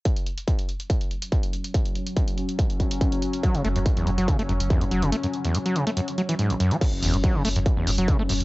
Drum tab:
CC |----------------|----------------|----------------|----------------|
HH |xxxxxxxxxxxxxxxx|xxxxxxxxxxxxxxxx|xxxxxxxxxxxxxxxx|xxxxxxxxxxxxxxxx|
BD |o---o---o---o---|o---o---o-o-o---|o---o---o---o---|----------------|

CC |x---------------|
HH |x-oxx-oxx-oxx-ox|
BD |o---o---o---o---|